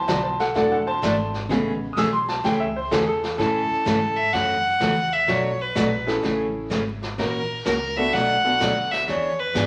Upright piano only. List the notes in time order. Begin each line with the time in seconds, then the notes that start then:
Already playing: E3 F#3 B3
0.08 C5 A5
0.23 C5 A5
0.40 A4 F#5
0.55 D3 F#3 A3 A4 F#5
0.71 A4 F#5
0.87 C5 A5
1.49 C#3 G#3 B3
1.93 D#6
1.98 E6
2.13 C6
2.29 A5
2.45 G5
2.60 E5
2.76 C5
2.91 A4
3.03 G#4
3.07 A4
3.38 A3 C#4 E4 A4
6.07 A3 C#4 E4 G#4 A4
7.97 A3 B3 D4 F#4 A4
8.44 A3 B3 D4 F#4 A4